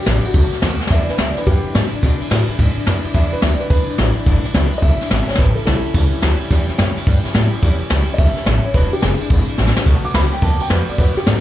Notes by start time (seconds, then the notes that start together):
0.06 A1 E2 B2 E3 G#3 D4 E4 G4, snare, ride
0.24 E3 G#3 D4 E4 F#4, muted upright bass stroke, ride
0.33 B1 D#3 A3 B3 F#4, kick, ride
0.51 A3 B3 F#4, snare, ride
0.62 D#2 B2 D#3 A3 B3 F#4, snare, ride
0.80 A3 B3 F#4, muted upright bass stroke, snare
0.87 E2 B2 E3, kick, snare, ride
0.91 G#3 D4 E4 E5
1.00 D5
1.07 E3 G#3 D4 E4 B4, muted upright bass stroke, snare, ride
1.17 D2 E2 B2 E3 G#3 D4 E4 E5, snare, ride
1.29 D5
1.36 E3 G#3 D4 E4 B4, muted upright bass stroke, snare, ride
1.46 F#2 E3 G#3 D4 E4 G4 B4, kick, ride
1.64 E3 G#3 D4 E4, muted upright bass stroke, ride
1.74 E2 G#2 B2 E3 G#3 D4 E4, snare, ride
1.92 E3 G#3 D4 E4, muted upright bass stroke, ride
2.02 E2 B2 E3 G#3 D4 E4, kick, snare, ride
2.20 E3 G#3 D4 E4, muted upright bass stroke, ride
2.30 E2 A2 B2 E3 G#3 D4 E4, snare, ride
2.48 E3 G#3 D4 E4, muted upright bass stroke, ride
2.58 G#2 E3 G#3 D4 E4, kick, ride
2.76 E3 G#3 D4 E4, muted upright bass stroke, ride
2.86 E2 F#2 B2 E3 G#3 D4 E4, snare, ride
3.04 E3 G#3 D4 E4, muted upright bass stroke, ride
3.14 E2 B2 E3 G#3 D4 E4 E5, kick, ride
3.24 D5
3.32 E3 G#3 D4 E4 B4, muted upright bass stroke, ride
3.42 D2 E2 B2 E3 G#3 D4 E4 E5, snare, ride
3.51 D5
3.60 E3 G#3 D4 E4 B4, muted upright bass stroke, snare, ride
3.70 B1 E3 G#3 D4 E4 B4, kick, ride
3.88 E3 G#3 D4 E4, muted upright bass stroke, ride
3.98 A1 E2 B2 E3 G#3 D4 E4, snare, ride
4.16 E3 G#3 D4 E4, ride
4.26 G#1 E2 B2 E3 G#3 D4 E4, kick, ride
4.44 E3 G#3 D4 E4, muted upright bass stroke, snare, ride
4.54 C#2 E2 B2 E3 G#3 D4 E4, snare, ride
4.72 E3 G#3 D4 E4, ride
4.78 E3 D#5
4.82 B1 G#3 D4 E4 E5, kick, ride
5.00 E3 G#3 D4 E4, snare, ride
5.09 G#1 E2 B2 E3 G#3 D4 E4, snare, ride
5.28 E3 G#3 D4 E4 C#5, muted upright bass stroke, snare
5.35 A2 E3 B4, snare
5.38 A1 G3 C#4 E4, kick, snare, ride
5.55 G3 C#4 E4 A4, muted upright bass stroke, ride
5.65 B1 A2 E3 G3 C#4 E4 A4, snare, ride
5.84 G3 C#4 E4, muted upright bass stroke, ride
5.94 C#2 E3 G3 C#4 E4, kick, ride
6.12 G3 C#4 E4, muted upright bass stroke, ride
6.22 D2 A2 E3 G3 C#4 E4, snare, ride
6.40 G3 C#4 E4, muted upright bass stroke, ride
6.50 E2 A2 E3 G3 C#4 E4, kick, snare, ride
6.68 G3 C#4 E4, muted upright bass stroke, snare, ride
6.78 F#2 A2 E3 G3 C#4 E4, snare, ride
6.96 G3 C#4 E4, muted upright bass stroke, snare, ride
7.06 G2 E3 G3 C#4 E4, kick, ride
7.24 G3 C#4 E4, muted upright bass stroke, snare, ride
7.34 A2 E3 G3 C#4 E4, snare, ride
7.52 G3 C#4 E4, muted upright bass stroke, ride
7.62 E2 A2 E3 G3 C#4 E4, kick, ride
7.80 G3 C#4 E4, muted upright bass stroke, ride
7.90 C#2 A2 E3 G3 C#4 E4, snare, ride
8.08 G3 C#4 E4, muted upright bass stroke, ride
8.14 D#5
8.18 B1 E3 G3 C#4 E4 E5, kick, ride
8.36 G3 C#4 E4, snare, ride
8.45 A1 A2 E3 G3 C#4 E4, snare, ride
8.63 G3 C#4 E4 C#5, muted upright bass stroke, ride
8.74 E1 E2 B2 E3 G#3 D4 E4 B4, kick, ride
8.91 E3 G#3 D4 E4 G4, muted upright bass stroke, ride
9.02 F#1 E2 B2 E3 G#3 D4 E4 G#4, snare, ride
9.19 E3 G#3 D4 E4, muted upright bass stroke, ride
9.29 G#1 E3 G#3 D4 E4, kick, ride
9.48 E3 G#3 D4 E4, muted upright bass stroke, ride
9.58 A1 E2 B2 E3 G#3 D4 E4, snare
9.67 snare
9.76 E3 G#3 D4 E4, snare
9.86 B1 B2 D#3 A3 B3 F#4, kick, snare, ride
10.04 A3 B3 F#4 D6, muted upright bass stroke, ride
10.14 C#2 B2 D#3 A3 B3 F#4 B5, snare, ride
10.32 A3 B3 F#4 G5, snare, ride
10.41 D#2 D#3 A3 B3 F#4 A5, kick, ride
10.59 A3 B3 F#4 G5, muted upright bass stroke, ride
10.70 F2 B2 D#3 A3 B3 F#4 B4, snare, ride
10.88 A3 B3 F#4 D5, muted upright bass stroke, ride
10.98 F#2 B2 D#3 A3 B3 F#4 B4, kick, ride
11.16 A3 B3 F#4 G4, muted upright bass stroke, snare, ride
11.26 G#2 B2 D#3 A3 B3 F#4 A4, snare, ride